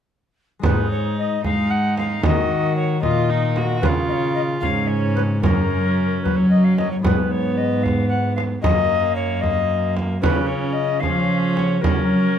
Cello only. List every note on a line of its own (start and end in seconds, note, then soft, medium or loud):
0.64 1.40 G#2 medium
1.45 2.23 G#3 medium
2.24 3.02 D#3 medium
3.03 3.84 A#2 medium
3.83 4.63 C#3 medium
4.64 5.46 G#2 medium
5.45 6.25 F#2 medium
6.26 7.04 F#3 medium
7.06 8.60 G#2 medium
8.65 10.20 F#2 medium
10.24 11.05 C#3 medium
11.04 11.84 F3 medium
11.84 12.39 F#3 medium